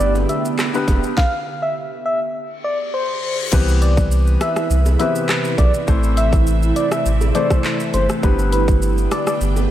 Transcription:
Already playing: D3 B3 G4 B4
0.00 G1 D5, shaker
0.15 high bongo, shaker
0.29 E5, closed hi-hat, high bongo, shaker
0.45 shaker
0.59 cross-stick, clap, high bongo, shaker
0.73 D3 B3 G4 B4, shaker
0.88 F1, kick, closed hi-hat, high bongo, low bongo, shaker
1.04 shaker
1.17 F5, kick, snare
1.62 E5
2.06 E5
2.35 reverse cymbal
2.64 D5
2.94 C5
3.52 C2 C3 E3 B3 C4 E4 G4 B4, kick, crash, shaker
3.68 shaker
3.82 D5, closed hi-hat, shaker
3.97 kick, shaker
4.11 shaker
4.27 shaker
4.41 E5, cross-stick, closed hi-hat, shaker
4.56 E5, cross-stick, shaker
4.70 C2, shaker
4.86 high bongo, shaker
4.99 E3 B3 C4 G4 B4 E5, closed hi-hat, high bongo, shaker
5.15 shaker
5.29 cross-stick, clap, shaker
5.45 shaker
5.58 B1 D5, kick, closed hi-hat, high bongo, low bongo, shaker
5.74 shaker
5.87 A1 E3 A3 C4 A4 C5, kick, shaker
6.03 shaker
6.17 E5, closed hi-hat, shaker
6.33 kick, shaker
6.47 shaker
6.62 shaker
6.76 D5, closed hi-hat, shaker
6.92 E5, cross-stick, shaker
7.06 A1, shaker
7.21 high bongo, shaker
7.34 E3 A3 C4 A4 C5 D5, closed hi-hat, high bongo, shaker
7.50 kick, cross-stick, shaker
7.64 clap, shaker
7.80 shaker
7.94 G1 C5, closed hi-hat, high bongo, low bongo, shaker
8.09 cross-stick, shaker
8.22 G1 D3 G3 B3 G4 B4, kick, shaker
8.39 shaker
8.52 B4, closed hi-hat, shaker
8.68 kick, shaker
8.82 shaker
8.98 shaker
9.11 D5, cross-stick, closed hi-hat, shaker
9.27 D5, cross-stick, shaker
9.41 G1, shaker
9.56 high bongo, shaker

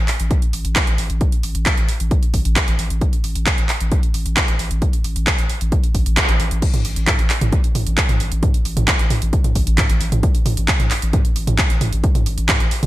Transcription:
0.08 clap, open hi-hat
0.20 A1, closed hi-hat
0.31 kick, closed hi-hat
0.42 closed hi-hat
0.53 A1, open hi-hat
0.65 A1, closed hi-hat
0.76 kick, clap, closed hi-hat
0.87 A1, closed hi-hat
0.98 A1, open hi-hat
1.10 A1, closed hi-hat
1.21 kick, closed hi-hat
1.32 closed hi-hat
1.43 A1, open hi-hat
1.55 A1, closed hi-hat
1.66 kick, clap, closed hi-hat
1.77 A1, closed hi-hat
1.89 open hi-hat
2.00 A1, closed hi-hat
2.11 kick, closed hi-hat
2.23 closed hi-hat
2.34 A1, kick, open hi-hat
2.45 A1, closed hi-hat
2.56 kick, clap, closed hi-hat
2.68 A1, closed hi-hat
2.79 A1, open hi-hat
2.90 A1, closed hi-hat
3.01 kick, closed hi-hat
3.13 closed hi-hat
3.24 A1, open hi-hat
3.35 A1, closed hi-hat
3.46 kick, clap, closed hi-hat
3.58 A1, closed hi-hat
3.69 clap, open hi-hat
3.81 A1, closed hi-hat
3.92 kick, closed hi-hat
4.03 closed hi-hat
4.14 A1, open hi-hat
4.26 A1, closed hi-hat
4.37 kick, clap, closed hi-hat
4.48 A1, closed hi-hat
4.59 A1, open hi-hat
4.71 A1, closed hi-hat
4.82 kick, closed hi-hat
4.93 closed hi-hat
5.04 A1, open hi-hat
5.16 A1, closed hi-hat
5.27 kick, clap, closed hi-hat
5.38 A1, closed hi-hat
5.50 open hi-hat
5.61 A1, closed hi-hat
5.72 kick, closed hi-hat
5.84 closed hi-hat
5.95 A1, kick, open hi-hat
6.06 A1, closed hi-hat
6.17 kick, clap, closed hi-hat
6.29 A1, closed hi-hat
6.40 A1, open hi-hat
6.51 A1, closed hi-hat
6.62 kick, closed hi-hat, crash
6.74 closed hi-hat, mid tom
6.85 A1, open hi-hat
6.96 A1, closed hi-hat
7.07 kick, clap, closed hi-hat, mid tom
7.19 A1, closed hi-hat
7.30 clap, open hi-hat
7.41 A1, closed hi-hat, mid tom
7.52 kick, closed hi-hat
7.64 closed hi-hat
7.75 A1, mid tom, open hi-hat
7.87 A1, closed hi-hat
7.98 kick, clap, closed hi-hat
8.09 A1, closed hi-hat, mid tom
8.20 A1, open hi-hat
8.32 A1, closed hi-hat
8.43 kick, closed hi-hat, mid tom
8.54 closed hi-hat
8.65 A1, open hi-hat
8.77 A1, closed hi-hat, mid tom
8.88 kick, clap, closed hi-hat
8.99 A1, closed hi-hat
9.10 mid tom, open hi-hat
9.22 A1, closed hi-hat
9.33 kick, closed hi-hat
9.44 closed hi-hat, mid tom
9.55 A1, kick, open hi-hat
9.67 A1, closed hi-hat
9.78 kick, clap, closed hi-hat, mid tom
9.90 A1, closed hi-hat
10.01 A1, open hi-hat
10.12 A1, closed hi-hat, mid tom
10.23 kick, closed hi-hat
10.35 closed hi-hat
10.46 A1, mid tom, open hi-hat
10.57 A1, closed hi-hat
10.68 kick, clap, closed hi-hat
10.80 A1, closed hi-hat, mid tom
10.91 clap, open hi-hat
11.02 A1, closed hi-hat
11.13 kick, closed hi-hat, mid tom
11.25 closed hi-hat
11.36 A1, open hi-hat
11.47 A1, closed hi-hat, mid tom
11.58 kick, clap, closed hi-hat
11.70 A1, closed hi-hat
11.81 A1, mid tom, open hi-hat
11.93 A1, closed hi-hat
12.04 kick, closed hi-hat
12.15 closed hi-hat, mid tom
12.26 A1, open hi-hat
12.38 A1, closed hi-hat
12.49 kick, clap, closed hi-hat, mid tom
12.60 A1, closed hi-hat
12.71 open hi-hat
12.83 A1, closed hi-hat, mid tom

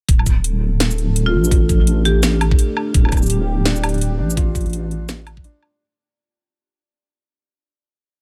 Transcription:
0.09 D1 A3 D4 A4, kick, closed hi-hat
0.19 low woodblock
0.26 kick, closed hi-hat, shaker
0.44 closed hi-hat
0.80 snare, closed hi-hat
0.91 shaker
0.98 closed hi-hat
1.16 closed hi-hat
1.26 F4
1.34 A1
1.44 shaker
1.51 kick, closed hi-hat
1.69 kick, closed hi-hat, shaker
1.80 A1
1.87 closed hi-hat
2.05 G4, closed hi-hat
2.23 D4, snare, closed hi-hat, shaker
2.41 closed hi-hat, low woodblock
2.51 kick
2.59 closed hi-hat
2.77 low woodblock
2.94 D1 G4, kick, closed hi-hat
3.05 low woodblock
3.09 closed hi-hat, low woodblock
3.12 kick, low woodblock, shaker
3.17 low woodblock, shaker
3.22 shaker
3.26 closed hi-hat, shaker
3.65 D4, snare, closed hi-hat
3.76 shaker
3.84 closed hi-hat, low woodblock
3.89 closed hi-hat
3.94 closed hi-hat
3.98 closed hi-hat
4.01 closed hi-hat
4.19 A1 D4
4.30 shaker
4.37 F4, kick, closed hi-hat
4.55 kick, closed hi-hat, shaker
4.61 closed hi-hat
4.66 A1, closed hi-hat
4.70 closed hi-hat
4.73 closed hi-hat
4.91 closed hi-hat
5.09 snare, closed hi-hat, shaker
5.27 closed hi-hat, low woodblock
5.37 kick
5.44 D4, closed hi-hat
5.63 low woodblock

